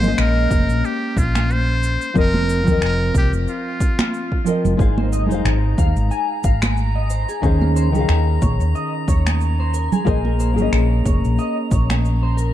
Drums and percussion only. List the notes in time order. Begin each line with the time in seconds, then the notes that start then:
0.03 low conga, cabasa
0.18 finger snap, cabasa
0.51 kick, high conga, cabasa
0.69 cabasa
0.84 cabasa
1.17 kick, cabasa
1.35 finger snap, high conga, cabasa
1.50 cabasa
1.83 cabasa
2.01 cabasa
2.16 kick, cabasa
2.34 high conga
2.49 cabasa
2.67 kick, low conga, cabasa
2.82 finger snap, cabasa
3.15 kick, high conga, cabasa
3.33 cabasa
3.48 cabasa
3.80 kick, cabasa
3.99 finger snap, high conga, cabasa
4.14 cabasa
4.32 kick
4.46 cabasa
4.65 low conga, cabasa
4.79 kick, cabasa
4.98 high conga
5.13 cabasa
5.31 low conga, cabasa
5.45 finger snap, cabasa
5.78 kick, high conga, cabasa
5.96 cabasa
6.11 cabasa
6.44 kick, cabasa
6.62 finger snap, high conga, cabasa
6.77 cabasa
7.10 cabasa
7.29 cabasa
7.43 kick, cabasa
7.62 high conga
7.76 cabasa
7.95 low conga, cabasa
8.09 finger snap, cabasa
8.42 kick, high conga, cabasa
8.61 cabasa
8.75 cabasa
9.08 kick, cabasa
9.27 finger snap, high conga, cabasa
9.41 cabasa
9.74 cabasa
9.92 low conga, cabasa
10.07 kick, cabasa
10.25 high conga
10.40 cabasa
10.58 low conga, cabasa
10.73 finger snap, cabasa
11.06 kick, high conga, cabasa
11.25 cabasa
11.39 cabasa
11.71 kick, cabasa
11.90 finger snap, high conga, cabasa
12.05 cabasa
12.38 cabasa